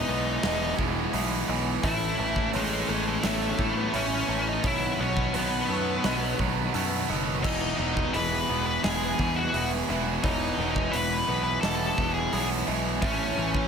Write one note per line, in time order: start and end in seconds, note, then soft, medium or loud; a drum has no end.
0.00 1.48 E3 medium
0.00 0.42 G#3 medium
0.00 7.40 B3 medium
0.00 0.74 D#4 medium
0.00 1.79 B4 medium
0.00 4.60 G#5 medium
0.08 0.37 B1 loud
0.08 0.42 E2 medium
0.08 0.43 B2 loud
0.08 0.43 E3 medium
0.08 0.43 G#3 medium
0.08 0.44 B3 loud
0.08 0.45 E4 loud
0.08 0.44 B4 medium
0.43 0.72 E1 loud
0.43 0.77 E2 loud
0.43 0.77 B2 medium
0.43 0.79 E3 loud
0.43 0.79 G#3 loud
0.43 0.79 B3 loud
0.43 0.81 E4 loud
0.43 1.14 D#5 medium
0.43 snare loud
0.43 open hi-hat medium
0.78 1.07 E1 medium
0.78 1.12 E2 loud
0.78 1.12 B2 loud
0.78 1.14 E3 medium
0.78 1.14 G#3 medium
0.78 1.14 B3 medium
0.78 1.16 E4 loud
0.78 kick medium
1.13 1.42 B1 loud
1.13 1.47 E2 loud
1.13 1.48 B2 loud
1.13 1.49 E3 medium
1.13 1.49 G#3 loud
1.13 1.49 B3 loud
1.13 1.50 E4 loud
1.13 1.48 E5 medium
1.13 open hi-hat medium
1.48 1.77 B1 loud
1.48 1.81 E2 medium
1.48 1.82 B2 medium
1.48 1.84 E3 loud
1.48 1.82 G#3 loud
1.48 1.82 B3 loud
1.48 1.85 E4 loud
1.48 1.84 D#5 medium
1.83 2.12 A1 loud
1.83 2.17 A2 loud
1.83 2.19 E3 loud
1.83 2.19 A3 loud
1.83 2.19 C#4 loud
1.83 2.50 E4 loud
1.83 2.20 E4 loud
1.83 4.61 C#5 medium
1.83 2.53 E5 loud
1.83 7.40 A5 medium
1.83 kick loud
1.83 open hi-hat medium
2.18 2.47 A1 loud
2.18 2.52 A2 medium
2.18 2.54 E3 loud
2.18 2.54 A3 loud
2.18 2.54 C#4 loud
2.18 2.55 E4 loud
2.36 kick medium
2.53 2.82 A1 loud
2.53 2.87 A2 loud
2.53 2.88 E3 loud
2.53 3.06 G#3 medium
2.53 2.89 A3 loud
2.53 2.89 C#4 loud
2.53 2.90 E4 loud
2.53 2.89 C#5 medium
2.53 open hi-hat medium
2.88 3.17 A1 medium
2.88 3.22 A2 medium
2.88 3.23 E3 medium
2.88 3.23 A3 medium
2.88 3.24 C#4 medium
2.88 3.25 E4 loud
2.88 3.23 A4 medium
3.07 3.25 G#3 medium
3.23 3.52 A1 loud
3.23 3.57 A2 loud
3.23 3.59 E3 loud
3.23 3.58 A3 loud
3.23 3.77 A3 loud
3.23 3.59 C#4 loud
3.23 3.60 E4 loud
3.23 3.94 C#5 medium
3.23 snare loud
3.23 open hi-hat medium
3.58 3.92 A2 medium
3.58 3.87 A2 medium
3.58 3.93 E3 medium
3.58 3.93 A3 loud
3.58 3.94 C#4 loud
3.58 3.95 E4 loud
3.58 kick medium
3.77 3.95 B3 medium
3.93 4.22 A1 loud
3.93 4.26 A2 medium
3.93 4.28 E3 loud
3.93 4.28 A3 loud
3.93 4.28 C#4 loud
3.93 4.47 C#4 loud
3.93 4.29 E4 loud
3.93 4.28 E5 medium
3.93 open hi-hat medium
4.27 4.57 A1 loud
4.27 4.61 A2 loud
4.27 4.64 E3 medium
4.27 4.62 A3 medium
4.27 4.62 C#4 medium
4.27 4.65 E4 medium
4.27 4.64 E5 medium
4.48 4.67 D#4 loud
4.63 4.92 B1 loud
4.63 4.98 B2 loud
4.63 4.98 D#3 loud
4.63 4.99 F#3 loud
4.63 5.00 B3 loud
4.63 5.00 D#4 loud
4.63 5.01 E4 loud
4.63 12.99 B4 medium
4.63 5.34 C#5 loud
4.63 7.41 F#5 medium
4.63 kick loud
4.63 open hi-hat medium
4.99 5.27 B1 medium
4.99 5.33 B2 medium
4.99 5.33 D#3 medium
4.99 5.34 F#3 loud
4.99 5.35 B3 loud
4.99 5.36 C#4 medium
4.99 5.35 D#4 loud
5.17 kick medium
5.34 5.62 B1 loud
5.34 5.68 B2 loud
5.34 5.68 D#3 medium
5.34 5.69 F#3 loud
5.34 5.70 B3 loud
5.34 6.36 B3 medium
5.34 5.70 D#4 medium
5.34 5.67 B4 medium
5.34 open hi-hat medium
5.68 5.97 F#2 medium
5.68 6.02 B2 medium
5.68 6.03 D#3 medium
5.68 6.04 F#3 medium
5.68 6.73 A3 medium
5.68 6.05 B3 loud
5.68 6.05 D#4 loud
5.68 6.04 B4 medium
6.03 6.32 B1 loud
6.03 6.37 B2 loud
6.03 6.38 D#3 loud
6.03 6.38 F#3 loud
6.03 6.39 B3 loud
6.03 6.39 D#4 loud
6.03 6.74 D#5 medium
6.03 snare loud
6.03 open hi-hat medium
6.38 6.68 B1 medium
6.38 6.72 B2 medium
6.38 6.73 D#3 medium
6.38 6.73 F#3 medium
6.38 6.74 B3 medium
6.38 6.74 D#4 medium
6.38 kick medium
6.73 7.03 F#2 loud
6.73 7.07 B2 medium
6.73 7.08 D#3 loud
6.73 7.09 F#3 loud
6.73 7.44 A3 medium
6.73 7.10 B3 loud
6.73 7.10 D#4 medium
6.73 7.09 E6 medium
6.73 open hi-hat medium
7.09 7.44 F#1 loud
7.09 7.42 B2 medium
7.09 7.42 D#3 loud
7.09 7.42 F#3 medium
7.09 7.44 B3 medium
7.09 7.43 D#4 loud
7.09 7.44 D#5 medium
7.09 snare soft
7.43 7.72 E1 loud
7.43 7.79 E2 medium
7.43 7.79 B2 loud
7.43 7.78 E3 medium
7.43 7.79 G#3 medium
7.43 7.79 B3 loud
7.43 7.77 D#4 medium
7.43 7.80 E4 loud
7.43 13.68 G#5 medium
7.43 8.14 E6 medium
7.43 kick loud
7.43 crash loud
7.78 8.07 E1 loud
7.78 8.14 E2 medium
7.78 8.14 B2 loud
7.78 8.13 E3 medium
7.78 8.14 G#3 medium
7.78 8.15 B3 loud
7.78 8.15 D#4 medium
7.78 8.15 E4 loud
7.97 kick medium
8.13 8.42 E1 loud
8.13 8.49 E2 medium
8.13 8.49 B2 loud
8.13 8.49 E3 loud
8.13 8.49 G#3 medium
8.13 8.50 B3 loud
8.13 8.50 E4 loud
8.13 8.65 B4 loud
8.13 8.49 D#5 medium
8.13 open hi-hat medium
8.49 8.77 E1 medium
8.49 8.83 E2 medium
8.49 8.83 B2 medium
8.49 8.83 E3 medium
8.49 8.84 G#3 loud
8.49 8.84 B3 medium
8.49 8.85 E4 loud
8.49 8.84 B4 medium
8.66 8.83 B4 loud
8.84 9.12 E1 loud
8.84 9.17 E2 loud
8.84 9.18 B2 medium
8.84 9.18 E3 loud
8.84 9.19 G#3 loud
8.84 9.19 B3 loud
8.84 9.20 E4 loud
8.84 9.38 G#4 loud
8.84 9.54 D#5 medium
8.84 snare loud
8.84 open hi-hat medium
9.19 9.53 E2 medium
9.19 9.47 E2 medium
9.19 9.53 B2 loud
9.19 9.53 E3 medium
9.19 9.54 G#3 medium
9.19 9.54 B3 medium
9.19 9.55 E4 loud
9.19 kick medium
9.36 9.69 F#4 medium
9.54 9.82 E1 medium
9.54 9.88 E2 loud
9.54 9.88 B2 loud
9.54 9.89 E3 loud
9.54 9.89 G#3 loud
9.54 9.89 B3 loud
9.54 9.91 E4 loud
9.54 9.87 E5 medium
9.54 open hi-hat medium
9.89 10.17 E1 loud
9.89 10.22 E2 medium
9.89 10.23 B2 loud
9.89 10.23 E3 medium
9.89 10.24 G#3 medium
9.89 10.23 B3 loud
9.89 10.25 E4 loud
9.89 10.24 E5 medium
9.89 snare soft
10.23 10.52 E1 loud
10.23 10.57 E2 medium
10.23 10.58 B2 loud
10.23 10.58 E3 loud
10.23 10.59 G#3 loud
10.23 10.59 B3 loud
10.23 10.96 D#4 loud
10.23 10.60 E4 loud
10.23 13.68 C#5 medium
10.23 10.94 C#5 loud
10.23 kick loud
10.23 open hi-hat medium
10.58 10.87 E1 loud
10.58 10.92 E2 medium
10.58 10.93 B2 medium
10.58 10.93 E3 loud
10.58 10.94 G#3 loud
10.58 10.94 B3 loud
10.58 10.95 E4 loud
10.76 kick medium
10.92 11.22 E1 loud
10.92 11.27 E2 medium
10.92 11.28 B2 loud
10.92 11.27 E3 loud
10.92 11.28 G#3 loud
10.92 11.27 B3 loud
10.92 11.29 E4 loud
10.92 11.43 B4 loud
10.92 11.27 B4 medium
10.92 open hi-hat medium
11.27 11.57 B1 medium
11.27 11.62 E2 medium
11.27 11.63 B2 medium
11.27 11.62 E3 medium
11.27 11.62 G#3 loud
11.27 11.62 B3 loud
11.27 11.64 E4 loud
11.27 11.63 B4 medium
11.44 11.61 B4 loud
11.61 11.91 E1 medium
11.61 11.96 E2 loud
11.61 11.97 B2 loud
11.61 11.97 E3 loud
11.61 11.97 G#3 loud
11.61 11.98 B3 loud
11.61 11.99 E4 loud
11.61 12.11 A4 loud
11.61 12.33 D#5 loud
11.61 snare loud
11.61 open hi-hat medium
11.98 12.26 E1 loud
11.98 12.31 E2 loud
11.98 12.32 B2 loud
11.98 12.32 E3 medium
11.98 12.32 G#3 medium
11.98 12.32 B3 medium
11.98 12.34 E4 loud
11.98 kick medium
12.14 12.47 G#4 medium
12.32 12.61 B1 loud
12.32 12.66 E2 loud
12.32 12.67 B2 loud
12.32 12.67 E3 loud
12.32 12.67 G#3 loud
12.32 12.67 B3 loud
12.32 12.69 E4 loud
12.32 12.68 E5 medium
12.32 open hi-hat medium
12.67 13.02 B1 loud
12.67 13.00 E2 medium
12.67 13.01 B2 medium
12.67 13.02 E3 medium
12.67 13.01 G#3 loud
12.67 13.01 B3 loud
12.67 13.04 E4 loud
12.67 13.03 D#5 medium
13.02 13.31 A1 loud
13.02 13.35 A2 loud
13.02 13.37 E3 loud
13.02 13.37 A3 loud
13.02 13.68 C#4 medium
13.02 13.68 C#4 loud
13.02 13.37 C#4 loud
13.02 13.39 E4 loud
13.02 13.68 E5 loud
13.02 kick loud
13.02 open hi-hat medium
13.36 13.65 A1 loud
13.36 13.68 A2 loud
13.36 13.68 E3 loud
13.36 13.68 A3 loud
13.36 13.68 C#4 loud
13.36 13.68 E4 loud
13.54 kick medium